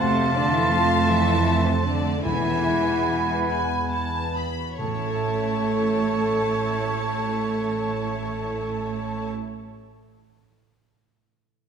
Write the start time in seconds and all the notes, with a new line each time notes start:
Already playing: A3 A4 A5
0.00 F2 C3 A3 C4 C5 F5 A5 C6
0.19 C4
0.34 D3 A3 D4 D5
0.53 E3 E4 A4 E5
0.71 F3 A3 F4 F5
0.92 A4
1.08 E3 E4 E5 A5
1.28 A4
1.47 A5
1.65 C3 C4 A4 C5
1.83 D3 A3 D4 D5
2.06 A4
2.24 E2 E3 G#3 E4 E5 F#5 G#5 B5
2.47 E4
2.67 B3
2.88 F#4
3.09 G#3
3.30 B4
3.47 F#5 G#5
3.71 B5
3.92 F#5 A5
4.14 B4
4.35 G#4 B5
4.59 F#4
4.77 A1 A2 A3 E4 A4 C#5 A5
4.87 A3
4.94 C#4
5.01 E4
5.08 A4
5.15 E5